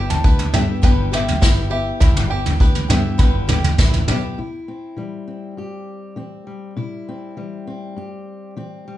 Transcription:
Already playing: fingered electric bass G1, twelve-string acoustic guitar G3 B3 E4 G4, five-string banjo E4 G4, upright piano G5
0.10 upright piano A5, floor tom
0.23 fingered electric bass D2, twelve-string acoustic guitar G3 B3 E4 G4, five-string banjo B4, kick
0.39 floor tom
0.53 fingered electric bass G2, twelve-string acoustic guitar G3 B3 E4 G4, five-string banjo E5, upright piano G5, floor tom, mid tom
0.82 fingered electric bass G1, twelve-string acoustic guitar G2 D3 G3 B3 E4 G4, five-string banjo B4, upright piano G5, kick, floor tom
1.12 twelve-string acoustic guitar G3 B3 E4 G4, five-string banjo G4, upright piano E5, mid tom
1.28 floor tom
1.41 fingered electric bass G1, twelve-string acoustic guitar G3 B3 E4 G4, five-string banjo E4, kick, snare
1.70 twelve-string acoustic guitar G3 B3 E4 G4, five-string banjo G4, upright piano E5
2.00 fingered electric bass G1, twelve-string acoustic guitar G2 D3 G3 B3 E4 G4, five-string banjo E4, kick, floor tom
2.17 mid tom
2.28 twelve-string acoustic guitar G3 B3 E4 G4, five-string banjo G4, upright piano G5
2.46 floor tom
2.58 fingered electric bass D2, twelve-string acoustic guitar G3 B3 E4 G4, five-string banjo B4, kick
2.75 floor tom
2.88 fingered electric bass G2, twelve-string acoustic guitar G3 B3 E4 G4, five-string banjo E5, floor tom, mid tom
3.18 fingered electric bass G1, twelve-string acoustic guitar G2 D3 G3 B3 E4 G4, five-string banjo B4, upright piano B5, kick, floor tom
3.48 twelve-string acoustic guitar G3 B3 E4 G4, five-string banjo G4, floor tom, mid tom
3.64 floor tom
3.77 fingered electric bass A1, twelve-string acoustic guitar G3 B3 E4 G4, five-string banjo E4, kick, snare, floor tom
3.93 floor tom
4.08 fingered electric bass B1, twelve-string acoustic guitar G3 B3 E4 G4, five-string banjo G4, mid tom
4.38 steel-string acoustic guitar C3 E4
4.68 steel-string acoustic guitar C4
4.97 steel-string acoustic guitar E3 G3
5.28 steel-string acoustic guitar C4
5.57 steel-string acoustic guitar G2 G4
6.16 steel-string acoustic guitar E3 C4
6.47 steel-string acoustic guitar G3
6.77 steel-string acoustic guitar C3 E4
7.09 steel-string acoustic guitar C4
7.37 steel-string acoustic guitar E3 G3
7.67 steel-string acoustic guitar C4
7.96 steel-string acoustic guitar G2 G4
8.57 steel-string acoustic guitar E3 C4
8.88 steel-string acoustic guitar G3

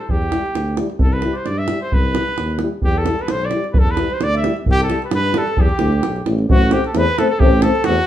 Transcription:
0.00 cornet A4
0.08 tuba E2, cornet G4, davul low
0.22 davul high
0.31 trombone G3, euphonium E4, davul high
0.46 davul high
0.54 tuba D2, davul high
0.68 davul high
0.77 trombone G3, euphonium E4, davul high
0.90 davul high
0.99 tuba C2, cornet A4, davul low
1.13 cornet B4, davul high
1.22 trombone G3, euphonium E4, davul high
1.33 cornet C5 D5, davul high
1.46 tuba G2, cornet D5, davul high
1.58 cornet E5, davul high
1.68 trombone G3, euphonium E4, davul high
1.82 cornet C5, davul high
1.92 tuba C2, flugelhorn B4, cornet B4, davul low
2.05 davul high
2.15 trombone G3, euphonium E4, davul high
2.28 davul high
2.38 tuba D#2, davul high
2.50 davul high
2.59 trombone G3, euphonium E4, davul high
2.82 tuba E2, cornet G4, davul low
2.86 flugelhorn G4
2.95 flugelhorn A4, cornet A4, davul high
3.06 trombone G3, euphonium E4, davul high
3.19 flugelhorn B4, cornet B4, davul high
3.28 tuba B1, flugelhorn C5, cornet C5, davul high
3.41 flugelhorn D5, cornet D5, davul high
3.51 trombone G3, euphonium E4, davul high
3.64 davul high
3.73 tuba E2, flugelhorn B4, cornet B4, davul low
3.78 flugelhorn A4, cornet A4
3.87 flugelhorn B4, cornet B4, davul high
3.97 trombone G3, euphonium E4, davul high
4.10 flugelhorn C5, cornet C5, davul high
4.21 tuba D2, flugelhorn D5, cornet D5, davul high
4.34 flugelhorn E5, cornet E5, davul high
4.43 trombone G3, euphonium E4, davul high
4.57 davul high
4.66 tuba C2, flugelhorn G4, davul low
4.72 cornet G4
4.79 flugelhorn A4, davul high
4.83 cornet A4
4.89 trombone G3, euphonium E4, davul high
5.02 flugelhorn B4, cornet B4, davul high
5.11 tuba G2, flugelhorn B4, davul high
5.15 cornet B4
5.24 davul high
5.33 trombone G3, euphonium E4, flugelhorn A4, davul high
5.38 cornet A4
5.47 davul high
5.57 tuba E2, flugelhorn G4, davul low
5.61 cornet G4
5.69 davul high
5.79 tuba D2, trombone G3, euphonium E4, davul high
5.92 davul high
6.03 tuba B1, davul high
6.16 davul high
6.25 tuba A1, trombone G3, euphonium E4, davul high
6.38 davul high
6.48 tuba A1, trombone A3, euphonium C4, flugelhorn F#4, cornet F#4, davul low
6.71 trombone A3, euphonium C4, cornet G4, flugelhorn G4, davul high
6.84 flugelhorn A4, cornet A4, davul high
6.94 tuba E2, trombone A3, euphonium C4, flugelhorn B4, davul high
6.98 cornet B4
7.17 trombone A3, euphonium C4, cornet A4, flugelhorn A4, davul high
7.30 cornet A4, flugelhorn A4
7.39 tuba A1, trombone A3, euphonium C4, flugelhorn G4, cornet G4, davul low
7.62 trombone A3, euphonium C4, cornet A4, flugelhorn A4, davul high
7.75 davul high
7.84 tuba E2, trombone A3, euphonium C4, cornet F#4, davul high
7.88 flugelhorn F#4

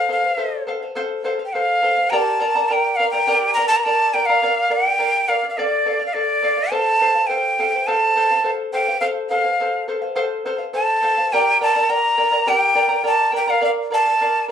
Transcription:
Already playing: quena F5
0.09 charango A4 C5 F5, quena F5
0.24 charango C5 F5
0.37 charango A4 C5 F5
0.67 charango A4 C5 F5
0.82 charango C5 F5
0.95 charango A4 C5 F5
1.24 charango A4 C5 F5
1.39 charango C5 F5
1.45 quena G5
1.53 charango A4 C5 F5, quena F5
1.82 charango A4 C5 F5
1.97 charango C5 F5
2.10 charango G4 A#4 D5 G5 A#5, quena A#5
2.14 quena A5
2.40 charango A#4 D5 G5 A#5
2.55 charango A#4 D5 A#5
2.68 charango A#4 D5 G5 A#5, quena A5
2.73 quena G5
2.96 charango A#4 G5, quena F5
3.00 charango D5 A#5
3.11 charango A#4 D5 A#5, quena G5
3.27 charango G4 A#4 D5 G5 A#5
3.54 charango A#4 G5, quena A#5
3.58 charango D5 A#5
3.68 charango D5 A#5, quena A5
3.72 charango A#4
3.76 quena A#5
3.84 charango A#4 D5 G5 A#5, quena A5
4.14 charango A#4 D5 G5 A#5, quena G5
4.26 charango D5 A#5, quena F5
4.30 charango A#4
4.42 charango A#4 D5 F5
4.70 charango A#4 D5 F5, quena G5
4.86 charango D5 F5
4.99 charango A#4 D5 F5
5.28 charango A#4 D5 F5, quena F5
5.43 charango D5 F5
5.50 quena F5
5.58 charango A4 D5 F5, quena D5
5.86 charango A4 D5 F5
6.00 charango D5 F5
6.06 quena F5
6.14 charango A4 D5 F5, quena D5
6.42 charango A4 D5 F5
6.57 charango D5 F5
6.71 charango A4 C5 F5, quena A5
7.00 charango A4 C5 F5
7.15 charango C5 F5
7.27 charango A4 C5 F5, quena G5
7.59 charango A4 C5 F5
7.73 charango C5 F5
7.87 charango A4 C5 F5, quena A5
8.16 charango A4 C5 F5
8.31 charango C5 F5
8.44 charango A4 C5 F5
8.73 charango A4 C5 F5, quena G5
8.88 charango C5 F5
9.00 charango A4 C5 F5, quena F5
9.29 charango A4 C5 F5, quena F5
9.44 charango C5 F5
9.60 charango A4 C5 F5
9.88 charango A4 C5 F5
10.02 charango C5 F5
10.15 charango A4 C5 F5
10.45 charango A4 C5 F5
10.58 charango C5 F5
10.73 charango A4 C5 F5, quena A5
11.02 charango A4 C5 F5
11.18 charango C5 F5
11.33 charango G4 A#4 D5 G5 A#5, quena G5
11.61 charango A#4 D5 G5 A#5, quena A5
11.75 charango A#4 D5 A#5
11.89 charango A#4 D5 G5 A#5, quena A#5
12.17 charango A#4 D5 G5 A#5
12.32 charango A#4 D5 A#5
12.47 charango G4 A#4 D5 G5 A#5, quena G5
12.75 charango A#4 D5 G5 A#5
12.89 charango A#4 D5 A#5
13.04 charango A#4 D5 G5 A#5, quena A5
13.32 charango A#4 D5 G5 A#5
13.37 quena G5
13.47 charango A#4 D5 A#5, quena F5
13.61 charango A#4 D5 F5, quena F5
13.90 charango A#4 D5 F5, quena A5
14.06 charango D5 F5
14.21 charango A#4 D5 F5
14.48 charango A#4

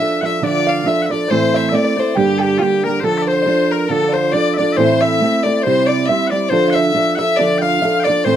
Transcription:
Already playing: five-string banjo E5, bagpipes E5, fiddle E5
0.00 steel-string acoustic guitar F3 D4 F4 A4
0.21 steel-string acoustic guitar F3 D4 F4, five-string banjo E5, fiddle E5, bagpipes F#5
0.25 steel-string acoustic guitar A4, bagpipes E5
0.42 steel-string acoustic guitar D3 F3 D4 F4 A4, five-string banjo D5, bagpipes D5, fiddle D5
0.67 five-string banjo F5, fiddle F5
0.84 steel-string acoustic guitar F3 D4 F4 A4, bagpipes E5, five-string banjo E5, fiddle E5
1.02 bagpipes E5 F#5
1.10 steel-string acoustic guitar F3 D4 F4 A4, five-string banjo D5, bagpipes D5, fiddle D5
1.28 steel-string acoustic guitar A2 E3 A3 C4 E4, five-string banjo C5, fiddle C5, bagpipes C5
1.32 steel-string acoustic guitar A4
1.54 five-string banjo E5, fiddle E5
1.69 steel-string acoustic guitar A3, five-string banjo D5, bagpipes E5
1.74 steel-string acoustic guitar C4 E4 A4, bagpipes D5, fiddle D5, five-string banjo D5
1.84 five-string banjo D5
1.96 steel-string acoustic guitar A3 C4 E4 A4, five-string banjo C5, fiddle C5
2.15 steel-string acoustic guitar G2 D3 G3 A#3 D4 G4, five-string banjo G4, bagpipes G4, fiddle G4
2.38 five-string banjo G4, bagpipes G4 A4, fiddle A4
2.44 fiddle G4
2.58 steel-string acoustic guitar G3 A#3 D4, fiddle F4, five-string banjo G4, bagpipes A4
2.62 bagpipes G4, fiddle G4, steel-string acoustic guitar G4
2.84 steel-string acoustic guitar G3 A#3 D4, five-string banjo A#4, bagpipes A#4, fiddle A#4
2.88 steel-string acoustic guitar G4
3.00 steel-string acoustic guitar D3 F3 D4, five-string banjo A4, fiddle A4, bagpipes C5
3.04 steel-string acoustic guitar F4 A4, bagpipes A4
3.18 bagpipes E5
3.22 bagpipes D5
3.27 five-string banjo C5, bagpipes C5, fiddle C5
3.42 five-string banjo D5
3.46 steel-string acoustic guitar F3 D4 F4 A4, five-string banjo C5
3.71 five-string banjo A#4, fiddle A#4, bagpipes A#4
3.88 steel-string acoustic guitar D3 F3 D4 F4 A4, fiddle A4, five-string banjo A4, bagpipes A4
3.96 five-string banjo A4
4.04 five-string banjo A4
4.09 fiddle C5, five-string banjo D5
4.14 bagpipes C5, five-string banjo C5
4.32 steel-string acoustic guitar F3 D4 F4, fiddle D5, bagpipes D5, five-string banjo D5
4.37 steel-string acoustic guitar A4
4.54 fiddle D5, bagpipes D5 E5
4.59 steel-string acoustic guitar F3 D4 F4 A4, five-string banjo D5
4.73 fiddle C5, bagpipes E5
4.77 steel-string acoustic guitar A2 E3 A3 C4 E4 A4, bagpipes C5, five-string banjo C5
5.01 fiddle E5, bagpipes E5, five-string banjo E5
5.21 steel-string acoustic guitar A3 C4 E4 A4
5.43 steel-string acoustic guitar A3 C4, fiddle D5, bagpipes D5, five-string banjo D5
5.48 steel-string acoustic guitar E4 A4
5.62 steel-string acoustic guitar G3, fiddle C5, bagpipes C5, five-string banjo C5
5.66 steel-string acoustic guitar C3 C4 E4 C5
5.86 fiddle D5, bagpipes D5, five-string banjo D5
6.06 steel-string acoustic guitar G3, fiddle E5, bagpipes E5, five-string banjo E5
6.10 steel-string acoustic guitar C4 E4 C5
6.27 fiddle D5, bagpipes D5 F#5
6.31 steel-string acoustic guitar G3 C4 E4 C5, five-string banjo D5
6.49 steel-string acoustic guitar D3 F3 D4 F4, fiddle C5, bagpipes C5, five-string banjo C5
6.53 steel-string acoustic guitar A4
6.68 five-string banjo F5, bagpipes F#5
6.73 fiddle E5, bagpipes E5, five-string banjo E5
6.94 steel-string acoustic guitar F3 D4 F4 A4
7.15 steel-string acoustic guitar F3, fiddle E5, five-string banjo E5, bagpipes E5 F#5
7.20 steel-string acoustic guitar D4 F4 A4
7.36 steel-string acoustic guitar D3 F3 D4, fiddle D5, bagpipes D5, five-string banjo D5
7.40 steel-string acoustic guitar F4 A4
7.58 fiddle F5, bagpipes F5 G5, five-string banjo F5
7.82 steel-string acoustic guitar F3 D4 F4 A4, five-string banjo E5
8.00 bagpipes D5 G5
8.05 steel-string acoustic guitar F3, fiddle D5, five-string banjo D5
8.09 steel-string acoustic guitar D4 F4 A4
8.24 steel-string acoustic guitar A2 E3 A3 C4 E4 A4, fiddle C5, bagpipes C5, five-string banjo C5

